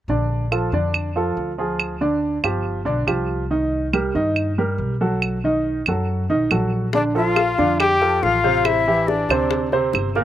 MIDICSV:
0, 0, Header, 1, 6, 480
1, 0, Start_track
1, 0, Key_signature, -2, "major"
1, 0, Tempo, 428571
1, 94, Time_signature, 4, 2, 24, 8
1, 11469, End_track
2, 0, Start_track
2, 0, Title_t, "Flute"
2, 0, Program_c, 0, 73
2, 7787, Note_on_c, 0, 74, 69
2, 7855, Note_off_c, 0, 74, 0
2, 8017, Note_on_c, 0, 77, 68
2, 8691, Note_off_c, 0, 77, 0
2, 8733, Note_on_c, 0, 79, 77
2, 9222, Note_on_c, 0, 77, 69
2, 9238, Note_off_c, 0, 79, 0
2, 9688, Note_on_c, 0, 76, 76
2, 9705, Note_off_c, 0, 77, 0
2, 10163, Note_on_c, 0, 74, 58
2, 10180, Note_off_c, 0, 76, 0
2, 10890, Note_off_c, 0, 74, 0
2, 11469, End_track
3, 0, Start_track
3, 0, Title_t, "Trumpet"
3, 0, Program_c, 1, 56
3, 7791, Note_on_c, 1, 62, 75
3, 7895, Note_off_c, 1, 62, 0
3, 8043, Note_on_c, 1, 65, 79
3, 8704, Note_off_c, 1, 65, 0
3, 8735, Note_on_c, 1, 67, 94
3, 9215, Note_on_c, 1, 65, 79
3, 9232, Note_off_c, 1, 67, 0
3, 9707, Note_on_c, 1, 64, 85
3, 9724, Note_off_c, 1, 65, 0
3, 10186, Note_on_c, 1, 62, 68
3, 10203, Note_off_c, 1, 64, 0
3, 10901, Note_off_c, 1, 62, 0
3, 11469, End_track
4, 0, Start_track
4, 0, Title_t, "Grand piano"
4, 0, Program_c, 2, 0
4, 104, Note_on_c, 2, 50, 61
4, 108, Note_on_c, 2, 74, 59
4, 110, Note_on_c, 2, 62, 57
4, 493, Note_off_c, 2, 50, 0
4, 495, Note_off_c, 2, 74, 0
4, 496, Note_off_c, 2, 62, 0
4, 577, Note_on_c, 2, 65, 51
4, 581, Note_on_c, 2, 69, 56
4, 582, Note_on_c, 2, 53, 57
4, 772, Note_off_c, 2, 65, 0
4, 774, Note_off_c, 2, 69, 0
4, 775, Note_off_c, 2, 53, 0
4, 818, Note_on_c, 2, 50, 66
4, 819, Note_on_c, 2, 62, 63
4, 827, Note_on_c, 2, 74, 65
4, 1209, Note_off_c, 2, 50, 0
4, 1210, Note_off_c, 2, 62, 0
4, 1215, Note_off_c, 2, 74, 0
4, 1296, Note_on_c, 2, 53, 55
4, 1299, Note_on_c, 2, 65, 58
4, 1309, Note_on_c, 2, 69, 58
4, 1688, Note_off_c, 2, 53, 0
4, 1689, Note_off_c, 2, 65, 0
4, 1696, Note_off_c, 2, 69, 0
4, 1773, Note_on_c, 2, 53, 57
4, 1777, Note_on_c, 2, 65, 56
4, 1785, Note_on_c, 2, 68, 54
4, 2166, Note_off_c, 2, 53, 0
4, 2168, Note_off_c, 2, 65, 0
4, 2173, Note_off_c, 2, 68, 0
4, 2250, Note_on_c, 2, 50, 67
4, 2253, Note_on_c, 2, 62, 59
4, 2255, Note_on_c, 2, 74, 66
4, 2644, Note_off_c, 2, 50, 0
4, 2646, Note_off_c, 2, 62, 0
4, 2647, Note_off_c, 2, 74, 0
4, 2728, Note_on_c, 2, 53, 55
4, 2728, Note_on_c, 2, 65, 56
4, 2737, Note_on_c, 2, 67, 57
4, 3123, Note_off_c, 2, 53, 0
4, 3123, Note_off_c, 2, 65, 0
4, 3128, Note_off_c, 2, 67, 0
4, 3194, Note_on_c, 2, 50, 71
4, 3199, Note_on_c, 2, 62, 66
4, 3203, Note_on_c, 2, 74, 66
4, 3398, Note_off_c, 2, 50, 0
4, 3401, Note_off_c, 2, 62, 0
4, 3403, Note_off_c, 2, 74, 0
4, 3437, Note_on_c, 2, 53, 51
4, 3440, Note_on_c, 2, 67, 57
4, 3443, Note_on_c, 2, 65, 59
4, 3836, Note_off_c, 2, 53, 0
4, 3838, Note_off_c, 2, 67, 0
4, 3840, Note_off_c, 2, 65, 0
4, 3925, Note_on_c, 2, 51, 60
4, 3927, Note_on_c, 2, 63, 60
4, 3932, Note_on_c, 2, 75, 59
4, 4321, Note_off_c, 2, 51, 0
4, 4322, Note_off_c, 2, 63, 0
4, 4325, Note_off_c, 2, 75, 0
4, 4404, Note_on_c, 2, 55, 57
4, 4410, Note_on_c, 2, 67, 58
4, 4410, Note_on_c, 2, 70, 58
4, 4604, Note_off_c, 2, 55, 0
4, 4607, Note_off_c, 2, 67, 0
4, 4607, Note_off_c, 2, 70, 0
4, 4642, Note_on_c, 2, 51, 64
4, 4649, Note_on_c, 2, 63, 65
4, 4653, Note_on_c, 2, 75, 64
4, 5039, Note_off_c, 2, 51, 0
4, 5043, Note_off_c, 2, 63, 0
4, 5046, Note_off_c, 2, 75, 0
4, 5132, Note_on_c, 2, 55, 60
4, 5133, Note_on_c, 2, 67, 55
4, 5137, Note_on_c, 2, 70, 60
4, 5525, Note_off_c, 2, 55, 0
4, 5526, Note_off_c, 2, 67, 0
4, 5528, Note_off_c, 2, 70, 0
4, 5608, Note_on_c, 2, 54, 59
4, 5612, Note_on_c, 2, 69, 59
4, 5613, Note_on_c, 2, 66, 62
4, 6003, Note_off_c, 2, 54, 0
4, 6006, Note_off_c, 2, 66, 0
4, 6006, Note_off_c, 2, 69, 0
4, 6093, Note_on_c, 2, 51, 65
4, 6101, Note_on_c, 2, 75, 64
4, 6103, Note_on_c, 2, 63, 66
4, 6486, Note_off_c, 2, 51, 0
4, 6491, Note_off_c, 2, 75, 0
4, 6492, Note_off_c, 2, 63, 0
4, 6585, Note_on_c, 2, 54, 56
4, 6591, Note_on_c, 2, 66, 53
4, 6591, Note_on_c, 2, 69, 53
4, 6973, Note_off_c, 2, 54, 0
4, 6977, Note_off_c, 2, 66, 0
4, 6977, Note_off_c, 2, 69, 0
4, 7051, Note_on_c, 2, 51, 66
4, 7053, Note_on_c, 2, 63, 69
4, 7061, Note_on_c, 2, 75, 64
4, 7248, Note_off_c, 2, 51, 0
4, 7249, Note_off_c, 2, 63, 0
4, 7254, Note_off_c, 2, 75, 0
4, 7292, Note_on_c, 2, 54, 56
4, 7297, Note_on_c, 2, 66, 55
4, 7298, Note_on_c, 2, 69, 53
4, 7686, Note_off_c, 2, 54, 0
4, 7689, Note_off_c, 2, 66, 0
4, 7689, Note_off_c, 2, 69, 0
4, 7774, Note_on_c, 2, 50, 64
4, 7780, Note_on_c, 2, 74, 60
4, 7782, Note_on_c, 2, 62, 63
4, 7970, Note_off_c, 2, 50, 0
4, 7974, Note_off_c, 2, 74, 0
4, 7975, Note_off_c, 2, 62, 0
4, 8007, Note_on_c, 2, 53, 63
4, 8009, Note_on_c, 2, 65, 60
4, 8011, Note_on_c, 2, 69, 62
4, 8403, Note_off_c, 2, 53, 0
4, 8404, Note_off_c, 2, 65, 0
4, 8406, Note_off_c, 2, 69, 0
4, 8494, Note_on_c, 2, 50, 68
4, 8496, Note_on_c, 2, 62, 67
4, 8497, Note_on_c, 2, 74, 64
4, 8888, Note_off_c, 2, 50, 0
4, 8889, Note_off_c, 2, 62, 0
4, 8890, Note_off_c, 2, 74, 0
4, 8971, Note_on_c, 2, 53, 55
4, 8972, Note_on_c, 2, 65, 58
4, 8979, Note_on_c, 2, 69, 60
4, 9366, Note_off_c, 2, 53, 0
4, 9366, Note_off_c, 2, 65, 0
4, 9371, Note_off_c, 2, 69, 0
4, 9451, Note_on_c, 2, 48, 71
4, 9454, Note_on_c, 2, 60, 68
4, 9454, Note_on_c, 2, 72, 67
4, 9846, Note_off_c, 2, 48, 0
4, 9848, Note_off_c, 2, 60, 0
4, 9848, Note_off_c, 2, 72, 0
4, 9938, Note_on_c, 2, 64, 65
4, 9939, Note_on_c, 2, 52, 65
4, 9945, Note_on_c, 2, 67, 63
4, 10331, Note_off_c, 2, 52, 0
4, 10331, Note_off_c, 2, 64, 0
4, 10334, Note_off_c, 2, 67, 0
4, 10423, Note_on_c, 2, 48, 65
4, 10426, Note_on_c, 2, 72, 66
4, 10427, Note_on_c, 2, 60, 73
4, 10814, Note_off_c, 2, 48, 0
4, 10816, Note_off_c, 2, 60, 0
4, 10816, Note_off_c, 2, 72, 0
4, 10896, Note_on_c, 2, 60, 70
4, 10897, Note_on_c, 2, 48, 70
4, 10899, Note_on_c, 2, 72, 68
4, 11290, Note_off_c, 2, 60, 0
4, 11291, Note_off_c, 2, 48, 0
4, 11292, Note_off_c, 2, 72, 0
4, 11375, Note_on_c, 2, 46, 69
4, 11380, Note_on_c, 2, 58, 74
4, 11382, Note_on_c, 2, 70, 77
4, 11469, Note_off_c, 2, 46, 0
4, 11469, Note_off_c, 2, 58, 0
4, 11469, Note_off_c, 2, 70, 0
4, 11469, End_track
5, 0, Start_track
5, 0, Title_t, "Upright bass"
5, 0, Program_c, 3, 32
5, 90, Note_on_c, 3, 34, 72
5, 766, Note_off_c, 3, 34, 0
5, 807, Note_on_c, 3, 41, 70
5, 1484, Note_off_c, 3, 41, 0
5, 1534, Note_on_c, 3, 38, 73
5, 2663, Note_off_c, 3, 38, 0
5, 2729, Note_on_c, 3, 31, 82
5, 3176, Note_off_c, 3, 31, 0
5, 3211, Note_on_c, 3, 35, 65
5, 3434, Note_off_c, 3, 35, 0
5, 3446, Note_on_c, 3, 36, 74
5, 4580, Note_off_c, 3, 36, 0
5, 4650, Note_on_c, 3, 43, 70
5, 5326, Note_off_c, 3, 43, 0
5, 5357, Note_on_c, 3, 35, 70
5, 6496, Note_off_c, 3, 35, 0
5, 6576, Note_on_c, 3, 42, 78
5, 7021, Note_off_c, 3, 42, 0
5, 7055, Note_on_c, 3, 35, 62
5, 7277, Note_off_c, 3, 35, 0
5, 7292, Note_on_c, 3, 34, 77
5, 8424, Note_off_c, 3, 34, 0
5, 8497, Note_on_c, 3, 41, 77
5, 9171, Note_off_c, 3, 41, 0
5, 9213, Note_on_c, 3, 33, 75
5, 10346, Note_off_c, 3, 33, 0
5, 10404, Note_on_c, 3, 38, 75
5, 11085, Note_off_c, 3, 38, 0
5, 11132, Note_on_c, 3, 31, 73
5, 11469, Note_off_c, 3, 31, 0
5, 11469, End_track
6, 0, Start_track
6, 0, Title_t, "Drums"
6, 583, Note_on_c, 9, 75, 56
6, 695, Note_off_c, 9, 75, 0
6, 1055, Note_on_c, 9, 75, 55
6, 1167, Note_off_c, 9, 75, 0
6, 2011, Note_on_c, 9, 75, 57
6, 2123, Note_off_c, 9, 75, 0
6, 2731, Note_on_c, 9, 75, 60
6, 2843, Note_off_c, 9, 75, 0
6, 3446, Note_on_c, 9, 75, 50
6, 3558, Note_off_c, 9, 75, 0
6, 4407, Note_on_c, 9, 75, 56
6, 4519, Note_off_c, 9, 75, 0
6, 4885, Note_on_c, 9, 75, 52
6, 4997, Note_off_c, 9, 75, 0
6, 5848, Note_on_c, 9, 75, 56
6, 5960, Note_off_c, 9, 75, 0
6, 6563, Note_on_c, 9, 75, 61
6, 6675, Note_off_c, 9, 75, 0
6, 7289, Note_on_c, 9, 75, 54
6, 7401, Note_off_c, 9, 75, 0
6, 7763, Note_on_c, 9, 60, 56
6, 7875, Note_off_c, 9, 60, 0
6, 8247, Note_on_c, 9, 75, 55
6, 8248, Note_on_c, 9, 60, 52
6, 8359, Note_off_c, 9, 75, 0
6, 8360, Note_off_c, 9, 60, 0
6, 8492, Note_on_c, 9, 60, 30
6, 8604, Note_off_c, 9, 60, 0
6, 8733, Note_on_c, 9, 75, 53
6, 8738, Note_on_c, 9, 60, 58
6, 8845, Note_off_c, 9, 75, 0
6, 8850, Note_off_c, 9, 60, 0
6, 8978, Note_on_c, 9, 60, 29
6, 9090, Note_off_c, 9, 60, 0
6, 9215, Note_on_c, 9, 60, 30
6, 9215, Note_on_c, 9, 61, 65
6, 9327, Note_off_c, 9, 60, 0
6, 9327, Note_off_c, 9, 61, 0
6, 9453, Note_on_c, 9, 60, 27
6, 9565, Note_off_c, 9, 60, 0
6, 9689, Note_on_c, 9, 60, 58
6, 9690, Note_on_c, 9, 75, 52
6, 9801, Note_off_c, 9, 60, 0
6, 9802, Note_off_c, 9, 75, 0
6, 10173, Note_on_c, 9, 60, 50
6, 10285, Note_off_c, 9, 60, 0
6, 10407, Note_on_c, 9, 60, 31
6, 10421, Note_on_c, 9, 75, 62
6, 10519, Note_off_c, 9, 60, 0
6, 10533, Note_off_c, 9, 75, 0
6, 10647, Note_on_c, 9, 60, 58
6, 10759, Note_off_c, 9, 60, 0
6, 10888, Note_on_c, 9, 60, 29
6, 11000, Note_off_c, 9, 60, 0
6, 11126, Note_on_c, 9, 60, 29
6, 11126, Note_on_c, 9, 61, 74
6, 11142, Note_on_c, 9, 75, 52
6, 11238, Note_off_c, 9, 60, 0
6, 11238, Note_off_c, 9, 61, 0
6, 11254, Note_off_c, 9, 75, 0
6, 11371, Note_on_c, 9, 60, 28
6, 11469, Note_off_c, 9, 60, 0
6, 11469, End_track
0, 0, End_of_file